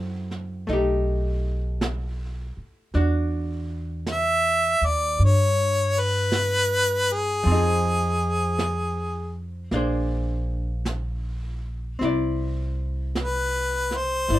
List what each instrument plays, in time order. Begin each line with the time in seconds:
Already playing: upright bass F#2, hollow-body jazz guitar F#3 C4 E4 A4
0.31 snare
0.67 upright bass B1, hollow-body jazz guitar A3 D#4, brush sweep, snare
0.73 hollow-body jazz guitar G4
1.81 brush sweep, snare, hi-hat pedal
2.57 muted upright bass stroke
2.94 upright bass E2, hollow-body jazz guitar D4 F#4, brush sweep, snare
4.07 brush sweep, snare, hi-hat pedal
4.12 harmonica E5
4.81 upright bass D#2
4.86 harmonica D5
5.19 upright bass G2, brush sweep
5.25 harmonica C#5
6.00 harmonica B4
6.32 brush sweep, snare, hi-hat pedal
7.13 harmonica G#4
7.43 upright bass F2, hollow-body jazz guitar F3 C4, brush sweep
7.52 hollow-body jazz guitar D#4 G#4
8.59 brush sweep, snare, hi-hat pedal
9.71 upright bass A#1, hollow-body jazz guitar A#3 D4 G#4, brush sweep, snare
9.76 hollow-body jazz guitar C5
10.85 brush sweep, snare, hi-hat pedal
11.99 upright bass C2, hollow-body jazz guitar C4 E4, brush sweep, snare
12.05 hollow-body jazz guitar D5
13.15 brush sweep, snare, hi-hat pedal
13.23 harmonica B4
13.91 snare
13.98 harmonica C5
14.29 upright bass G1, hollow-body jazz guitar E4, brush sweep, snare
14.34 hollow-body jazz guitar D5